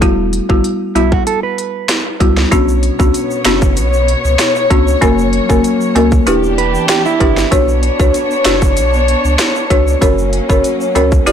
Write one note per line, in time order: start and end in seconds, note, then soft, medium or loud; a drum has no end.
0.01 0.40 E1 loud
0.01 0.15 G3 medium
0.01 0.15 B3 medium
0.01 0.15 E4 medium
0.01 0.16 F#4 loud
0.01 kick loud
0.01 closed hi-hat medium
0.33 closed hi-hat medium
0.49 0.61 G1 medium
0.49 0.92 G3 medium
0.49 0.92 B3 medium
0.49 0.92 E4 medium
0.49 0.92 F#4 medium
0.49 kick medium
0.64 closed hi-hat medium
0.95 1.21 B1 medium
0.95 1.24 G3 medium
0.95 1.24 B3 medium
0.95 1.12 E4 medium
0.95 1.24 E4 medium
0.95 1.25 F#4 medium
0.95 closed hi-hat medium
1.12 1.26 F#4 medium
1.12 kick medium
1.27 1.43 A4 medium
1.27 closed hi-hat medium
1.43 2.33 B4 medium
1.58 closed hi-hat medium
1.89 finger snap medium
1.89 cross-stick medium
1.89 snare loud
1.89 closed hi-hat medium
2.20 2.46 C#2 loud
2.20 2.34 G3 medium
2.20 2.34 B3 medium
2.20 2.34 E4 medium
2.20 2.34 F#4 medium
2.20 kick medium
2.20 closed hi-hat medium
2.37 snare medium
2.51 2.90 B1 loud
2.51 4.99 B2 medium
2.51 2.65 B3 medium
2.51 4.99 B3 medium
2.51 2.65 C#4 medium
2.51 2.66 D4 medium
2.51 2.66 F#4 loud
2.51 6.23 C#5 medium
2.51 kick loud
2.51 closed hi-hat medium
2.51 shaker medium
2.68 shaker medium
2.83 closed hi-hat medium
2.99 3.11 C#2 loud
2.99 3.42 B3 medium
2.99 3.42 C#4 medium
2.99 3.42 D4 medium
2.99 3.42 F#4 medium
2.99 kick medium
2.99 shaker medium
3.14 closed hi-hat medium
3.14 shaker medium
3.31 shaker medium
3.45 3.78 F#1 medium
3.45 3.74 B3 medium
3.45 3.74 C#4 medium
3.45 3.75 D4 medium
3.45 3.75 F#4 medium
3.45 finger snap loud
3.45 snare loud
3.45 closed hi-hat medium
3.45 shaker medium
3.62 kick loud
3.62 shaker medium
3.77 4.15 B1 loud
3.77 closed hi-hat medium
3.77 shaker medium
3.93 shaker soft
4.08 closed hi-hat medium
4.25 4.36 C#2 medium
4.25 shaker medium
4.39 finger snap medium
4.39 cross-stick medium
4.39 snare loud
4.39 closed hi-hat medium
4.39 shaker medium
4.56 shaker soft
4.70 4.96 C#2 loud
4.70 4.84 B3 medium
4.70 4.84 C#4 medium
4.70 4.84 D4 medium
4.70 4.84 F#4 medium
4.70 kick medium
4.70 closed hi-hat medium
4.88 shaker medium
5.01 5.40 F#1 loud
5.01 6.26 F#3 medium
5.01 5.15 A#3 loud
5.01 6.25 A#3 medium
5.01 5.15 C#4 medium
5.01 5.16 F#4 medium
5.01 5.16 A#4 loud
5.01 kick loud
5.01 closed hi-hat medium
5.01 shaker medium
5.18 shaker medium
5.33 closed hi-hat medium
5.49 5.61 F#1 medium
5.49 5.92 A#3 medium
5.49 5.92 C#4 medium
5.49 5.92 F#4 medium
5.49 5.92 A#4 medium
5.49 kick medium
5.49 shaker medium
5.64 closed hi-hat medium
5.64 shaker medium
5.81 shaker medium
5.95 6.21 C#2 medium
5.95 6.24 A#3 medium
5.95 6.24 C#4 medium
5.95 6.25 F#4 medium
5.95 6.25 A#4 medium
5.95 closed hi-hat medium
5.95 high timbale medium
5.95 shaker medium
6.12 kick loud
6.12 shaker medium
6.27 6.77 E1 loud
6.27 7.51 E3 medium
6.27 9.98 B3 medium
6.27 7.13 D4 loud
6.27 7.51 D4 medium
6.27 7.13 E4 medium
6.27 7.51 G4 medium
6.27 7.14 G4 medium
6.27 7.14 B4 loud
6.27 closed hi-hat medium
6.27 shaker medium
6.43 shaker soft
6.58 6.88 B4 medium
6.58 closed hi-hat medium
6.75 shaker medium
6.89 7.05 G4 medium
6.89 finger snap medium
6.89 cross-stick medium
6.89 snare loud
6.89 closed hi-hat medium
6.89 shaker medium
7.06 7.49 E4 medium
7.06 shaker soft
7.20 7.46 G1 loud
7.20 7.34 D4 medium
7.20 7.34 E4 medium
7.20 7.34 G4 medium
7.20 7.34 B4 medium
7.20 kick medium
7.20 closed hi-hat medium
7.37 snare medium
7.37 shaker medium
7.51 7.90 B1 loud
7.51 7.65 D4 medium
7.51 9.99 D4 medium
7.51 7.65 F#4 medium
7.51 7.66 B4 medium
7.51 9.99 C#5 medium
7.51 7.66 C#5 loud
7.51 kick loud
7.51 closed hi-hat medium
7.51 shaker medium
7.68 shaker medium
7.83 closed hi-hat medium
7.99 8.11 C#2 loud
7.99 8.42 D4 medium
7.99 8.42 F#4 medium
7.99 8.42 B4 medium
7.99 8.42 C#5 medium
7.99 kick medium
7.99 shaker medium
8.14 closed hi-hat medium
8.14 shaker medium
8.31 shaker medium
8.45 8.78 F#1 medium
8.45 8.74 D4 medium
8.45 8.74 F#4 medium
8.45 8.75 B4 medium
8.45 8.75 C#5 medium
8.45 finger snap medium
8.45 snare loud
8.45 closed hi-hat medium
8.45 shaker medium
8.62 kick loud
8.62 shaker medium
8.77 9.15 B1 medium
8.77 closed hi-hat medium
8.77 shaker medium
8.93 shaker soft
9.08 closed hi-hat medium
9.25 9.36 C#2 medium
9.25 shaker medium
9.39 finger snap medium
9.39 cross-stick medium
9.39 snare loud
9.39 closed hi-hat medium
9.39 shaker medium
9.55 shaker soft
9.70 9.96 C#2 loud
9.70 9.99 D4 medium
9.70 9.99 F#4 medium
9.70 9.99 B4 medium
9.70 10.00 C#5 medium
9.70 kick medium
9.70 closed hi-hat medium
9.88 shaker medium
10.01 10.40 F#1 loud
10.01 11.26 F#3 medium
10.01 11.26 A#3 medium
10.01 10.15 C#4 medium
10.01 11.26 C#4 medium
10.01 10.15 F#4 medium
10.01 10.15 A#4 medium
10.01 10.16 C#5 loud
10.01 kick loud
10.01 closed hi-hat medium
10.01 shaker medium
10.18 shaker medium
10.33 closed hi-hat medium
10.49 10.61 F#1 medium
10.49 10.92 C#4 medium
10.49 10.92 F#4 medium
10.49 10.92 A#4 medium
10.49 10.92 C#5 medium
10.49 kick medium
10.49 shaker medium
10.64 closed hi-hat medium
10.64 shaker medium
10.81 shaker medium
10.95 11.21 C#2 medium
10.95 11.24 C#4 medium
10.95 11.24 F#4 medium
10.95 11.24 A#4 medium
10.95 11.25 C#5 medium
10.95 closed hi-hat medium
10.95 high timbale medium
10.95 shaker medium
11.12 kick medium
11.12 shaker medium
11.26 11.32 E1 loud
11.26 11.32 E3 medium
11.26 11.32 B3 medium
11.26 11.32 D4 medium
11.26 11.32 E4 loud
11.26 11.32 G4 medium
11.26 11.32 B4 medium
11.26 11.32 D5 loud
11.26 closed hi-hat medium
11.26 shaker medium